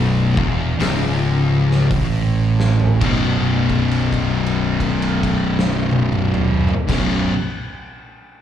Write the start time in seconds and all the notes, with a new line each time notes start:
Already playing: B0 B1
0.37 E1 E2, kick
0.80 C#1 C#2, snare, open hi-hat
1.71 snare
1.91 A1 A2, kick, open hi-hat
2.60 snare
2.80 floor tom
3.01 B0 B1 F#2, kick, crash
3.05 B2
3.69 kick, crash
3.91 crash
4.13 kick, crash
4.46 crash
4.80 kick, crash
5.02 crash
5.23 kick, crash
5.59 snare
5.91 high tom
6.13 mid tom
6.34 mid tom
6.69 floor tom
6.88 B0 B1 F#2 B2, kick, snare, crash